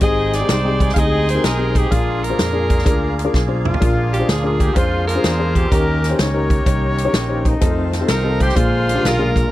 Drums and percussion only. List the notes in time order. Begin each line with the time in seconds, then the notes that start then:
0.01 kick, closed hi-hat
0.33 snare, closed hi-hat
0.49 snare, closed hi-hat
0.80 kick, closed hi-hat
0.89 snare
0.96 kick, closed hi-hat
1.29 closed hi-hat
1.44 snare, closed hi-hat
1.75 kick, closed hi-hat
1.92 kick, closed hi-hat
2.24 closed hi-hat
2.39 snare, closed hi-hat
2.70 kick, closed hi-hat
2.79 snare
2.86 kick, closed hi-hat
3.19 closed hi-hat
3.34 kick, snare
3.65 mid tom
3.74 floor tom
3.82 kick, closed hi-hat
4.14 closed hi-hat
4.29 snare, closed hi-hat
4.60 kick, closed hi-hat
4.76 kick, closed hi-hat
5.09 closed hi-hat
5.24 snare, closed hi-hat
5.55 kick, closed hi-hat
5.72 kick, closed hi-hat
6.04 snare, closed hi-hat
6.19 snare, closed hi-hat
6.50 kick, closed hi-hat
6.66 kick, closed hi-hat
6.98 closed hi-hat
7.14 snare, closed hi-hat
7.45 kick, closed hi-hat
7.61 kick, closed hi-hat
7.93 snare, closed hi-hat
8.08 snare, closed hi-hat
8.40 kick, closed hi-hat
8.49 snare
8.56 kick, closed hi-hat
8.89 closed hi-hat
9.05 snare, closed hi-hat
9.36 kick, closed hi-hat